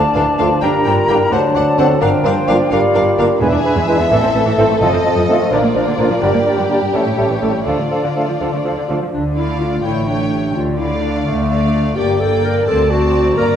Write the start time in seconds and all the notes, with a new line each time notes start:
Already playing: D3 A3 D4 A4 D5 F5 A5
0.14 D2 E3 D4 A4 F5
0.38 D2 D3 F3 A3 D4 F4 A4 F5
0.61 G1 G2 G3 D4 A#4 G5 A#5
0.85 G1 G2 A#3 D4 F4 A#4 G5
1.08 G1 G2 D3 A#3 D4 E4 G4 A#4 G5
1.31 D2 D3 F#3 D4 C5 F#5 A5
1.55 D2 C4 D4 C5 D5 F#5
1.77 D2 D3 C4 D4 F#4 A4 C5 F#5
2.01 G1 G2 F3 D4 A#4 F5 G5
2.24 G1 G2 A#3 D4 A#4 C5 F5
2.47 G1 G2 D3 A#3 D4 F4 A#4 D5 F5
2.71 G1 G2 G3 D4 F4 A#4 D5 F5
2.94 G1 G2 D4 F4 A#4 F5
3.17 G1 G2 D3 A#3 D4 F4 A#4 F5
3.41 E1 E2 E3 G#3 D4 G#4 B4 E5 G#5
3.52 E2 D4
3.64 E3 G#3 D4 B4 G#5
3.75 E2 G#3
3.87 E3 G#3 D4 E4 B4 G#5
3.99 E2 B3
4.10 A1 A2 E3 C4 A4 E5
4.23 A2 C4
4.34 A1 A2 E3 A3 C4 A4 E5
4.46 A2 E3
4.57 A1 A2 E3 A3 C4 E4 A4 E5
4.69 A2 A3
4.81 F1 F2 F3 C4 A4 D#5
4.93 F2 C4
5.04 F3 A3 C4 A4 D#5
5.17 F2 F3
5.28 D#3 F3 A3 C4 D#4 F4 A4 D#5
5.40 F2 A3
5.51 A#1 A#2 D3 F3 D4 F4 A#4 D5
5.63 A#2 A#3
5.74 A#1 A#2 F3 A#3 D4 A#4 D5
5.86 A#2 D3
5.97 A#1 A#2 D3 F3 A#3 D4 F4 A#4 D5
6.09 A#2 F3
6.21 G1 G2 D3 G3 D4 G4 A#4 D5
6.33 G2 A#3
6.45 G3 A#3 D4 A#4 D5
6.58 G2 D3
6.69 D3 G3 A#3 D4 G4 A#4 D5
6.81 G2 G3
6.93 A1 A2 E3 G3 C#4 A4 C#5 E5
7.05 A2 A3
7.17 A1 A2 G3 A3 C#4 A4 E5
7.29 A2 E3
7.41 A1 A2 E3 G3 A3 C#4 G4 A4 E5
7.53 A2 G3
7.65 D2 D3 F3 D4 F4 A4 D5 F5
7.78 D3 A3
7.91 F3 D4 A4 F5
8.03 D3
8.15 D3 F3 A3 D4 F4 A4 F5
8.28 D3 F3
8.40 D2 D3 F3 D4 A4 F5
8.53 D3 A3
8.64 D2 D3 F3 D4 A4 F5
8.77 D3
8.88 D2 D3 F3 A3 D4 F4 A4 F5
9.01 D3 F3
9.13 D2 D3 D4
9.36 A3 D4 E4 D5 F5
9.60 D4 F4
9.83 A1 A2 A3 E4 C#5 G5
10.07 A3 D4 C#5 G5
10.32 C#4 G4
10.55 D2 D3 F4
10.78 A3 D4 E4 D5 F5
11.02 D4 A4
11.26 D2 D3 A3 F5
11.49 A3 A4 D5 F5
11.73 F4
11.96 G1 G2 A#3 G4 D5 G5
12.19 A#3 A4 D5 G5
12.43 D4 G4 A#4
12.66 D2 D3 C4 A4 D5 A5
12.89 C4 F#4 D5 A5
13.13 D4 A4
13.36 G1 G2 A#3 A#4 D5 A#5